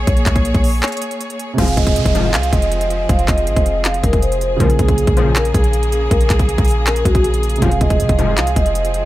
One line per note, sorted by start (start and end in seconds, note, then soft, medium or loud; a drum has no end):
0.00 1.55 A#3 medium
0.00 1.55 G#4 medium
0.00 1.55 C#5 medium
0.07 0.25 A#1 loud
0.07 kick loud
0.07 closed hi-hat medium
0.17 closed hi-hat medium
0.26 0.53 A#1 loud
0.26 kick loud
0.26 clap loud
0.26 closed hi-hat medium
0.36 kick loud
0.36 closed hi-hat medium
0.45 closed hi-hat medium
0.54 0.82 A#1 loud
0.54 kick loud
0.54 closed hi-hat soft
0.64 open hi-hat medium
0.83 clap loud
0.83 closed hi-hat soft
0.88 closed hi-hat medium
0.92 closed hi-hat medium
0.97 closed hi-hat medium
1.02 closed hi-hat medium
1.11 closed hi-hat medium
1.21 closed hi-hat medium
1.30 closed hi-hat medium
1.39 closed hi-hat medium
1.54 4.54 C3 medium
1.54 4.55 G#3 medium
1.58 1.76 F1 loud
1.58 1.66 C2 medium
1.58 1.66 G#2 medium
1.58 4.57 F3 medium
1.58 1.66 F3 loud
1.58 4.57 C4 medium
1.58 4.57 F4 medium
1.58 9.05 G#4 medium
1.58 4.58 G#4 medium
1.58 1.74 F5 loud
1.58 kick loud
1.58 closed hi-hat medium
1.58 crash loud
1.58 downlifter medium
1.68 closed hi-hat medium
1.77 1.97 F1 loud
1.77 2.30 D#5 medium
1.77 kick loud
1.77 closed hi-hat medium
1.87 kick loud
1.87 closed hi-hat medium
1.96 2.05 C3 loud
1.96 closed hi-hat medium
2.05 2.35 F1 loud
2.05 kick loud
2.05 closed hi-hat medium
2.15 2.31 C2 loud
2.15 2.31 G#2 loud
2.15 2.31 F3 loud
2.15 closed hi-hat medium
2.34 2.52 C2 loud
2.34 clap loud
2.34 closed hi-hat medium
2.43 closed hi-hat medium
2.53 3.07 F1 loud
2.53 3.06 D#5 medium
2.53 kick loud
2.53 closed hi-hat medium
2.62 closed hi-hat medium
2.72 closed hi-hat medium
2.81 closed hi-hat medium
2.90 closed hi-hat medium
3.09 3.27 F1 loud
3.09 3.25 F5 medium
3.09 kick loud
3.09 closed hi-hat medium
3.19 closed hi-hat medium
3.28 3.48 F1 loud
3.28 3.81 D#5 medium
3.28 kick loud
3.28 clap loud
3.28 closed hi-hat medium
3.38 closed hi-hat medium
3.47 3.56 G#1 loud
3.47 closed hi-hat medium
3.56 4.02 F1 loud
3.56 kick loud
3.56 closed hi-hat medium
3.66 closed hi-hat medium
3.85 4.01 F5 medium
3.85 clap loud
3.85 closed hi-hat medium
3.94 closed hi-hat medium
4.04 4.58 F1 loud
4.04 4.20 A#4 medium
4.04 kick loud
4.04 closed hi-hat medium
4.13 kick loud
4.13 closed hi-hat medium
4.22 4.58 C5 medium
4.22 closed hi-hat medium
4.32 closed hi-hat medium
4.41 closed hi-hat medium
4.56 4.78 A#1 loud
4.56 4.68 C#2 medium
4.56 4.68 A#2 medium
4.56 7.56 C#3 medium
4.56 7.59 C#3 medium
4.56 4.68 F3 loud
4.56 7.58 A#3 medium
4.56 7.59 A#3 medium
4.56 4.76 A#4 loud
4.56 kick loud
4.56 closed hi-hat medium
4.62 7.59 F4 medium
4.62 7.60 G#4 medium
4.70 closed hi-hat medium
4.79 5.06 A#1 loud
4.79 5.32 G#4 medium
4.79 kick loud
4.79 closed hi-hat medium
4.88 kick loud
4.88 closed hi-hat medium
4.98 closed hi-hat medium
5.07 5.53 A#1 loud
5.07 kick loud
5.07 closed hi-hat medium
5.17 5.33 C#2 loud
5.17 5.33 A#2 loud
5.17 5.33 F3 loud
5.17 closed hi-hat medium
5.35 5.51 A#4 medium
5.35 clap loud
5.35 closed hi-hat medium
5.45 closed hi-hat medium
5.54 6.09 A#1 loud
5.54 6.08 G#4 medium
5.54 kick loud
5.54 closed hi-hat medium
5.64 closed hi-hat medium
5.73 closed hi-hat medium
5.83 closed hi-hat medium
5.92 closed hi-hat medium
6.11 6.29 A#1 loud
6.11 6.27 A#4 medium
6.11 kick loud
6.11 closed hi-hat medium
6.21 closed hi-hat medium
6.30 6.57 A#1 loud
6.30 6.83 G#4 medium
6.30 kick loud
6.30 clap loud
6.30 closed hi-hat medium
6.39 kick loud
6.39 closed hi-hat medium
6.49 closed hi-hat medium
6.58 7.04 A#1 loud
6.58 kick loud
6.58 closed hi-hat medium
6.65 closed hi-hat medium
6.65 open hi-hat medium
6.71 closed hi-hat medium
6.87 7.03 A#4 medium
6.87 clap loud
6.87 closed hi-hat medium
6.96 closed hi-hat medium
7.05 7.60 A#1 loud
7.05 7.21 F#4 medium
7.05 kick loud
7.05 closed hi-hat medium
7.15 kick loud
7.15 closed hi-hat medium
7.24 7.60 G#4 medium
7.24 closed hi-hat medium
7.34 closed hi-hat medium
7.43 closed hi-hat medium
7.49 closed hi-hat medium
7.56 9.05 C3 medium
7.56 closed hi-hat medium
7.60 7.80 F1 loud
7.60 7.70 C2 medium
7.60 7.70 G#2 medium
7.60 9.05 F3 medium
7.60 7.70 F3 loud
7.60 9.05 G#3 medium
7.60 9.05 C4 medium
7.60 9.05 F4 medium
7.60 7.78 F5 loud
7.60 kick loud
7.60 closed hi-hat medium
7.66 9.05 G#4 medium
7.71 closed hi-hat medium
7.81 8.01 F1 loud
7.81 8.34 D#5 medium
7.81 kick loud
7.81 closed hi-hat medium
7.90 kick loud
7.90 closed hi-hat medium
8.00 8.09 C3 loud
8.00 closed hi-hat medium
8.09 8.39 F1 loud
8.09 kick loud
8.09 closed hi-hat medium
8.19 8.35 C2 loud
8.19 8.35 G#2 loud
8.19 8.35 F3 loud
8.19 closed hi-hat medium
8.37 8.55 C2 loud
8.37 8.53 F5 medium
8.37 clap loud
8.37 closed hi-hat medium
8.47 closed hi-hat medium
8.56 9.05 F1 loud
8.56 9.05 D#5 medium
8.56 kick loud
8.56 closed hi-hat medium
8.66 closed hi-hat medium
8.75 closed hi-hat medium
8.85 closed hi-hat medium
8.94 closed hi-hat medium